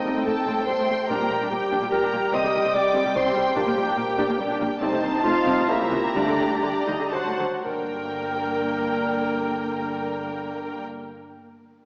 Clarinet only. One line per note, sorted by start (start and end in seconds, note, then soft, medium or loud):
0.00 0.24 D#4 medium
0.25 0.68 A4 medium
0.67 1.11 C5 medium
1.09 1.50 A#4 medium
1.50 1.91 G4 medium
1.91 2.35 A#4 medium
2.34 2.73 D#5 medium
2.74 3.14 D5 medium
3.16 3.55 C5 medium
3.56 4.17 G4 medium
4.18 4.27 G4 medium
4.80 5.21 C4 medium
5.23 5.70 F4 medium
5.69 6.14 E4 medium
6.15 6.61 D4 medium
6.62 6.85 D4 medium
6.86 6.97 D#4 medium
7.11 7.64 F#4 medium
7.64 10.81 A#4 medium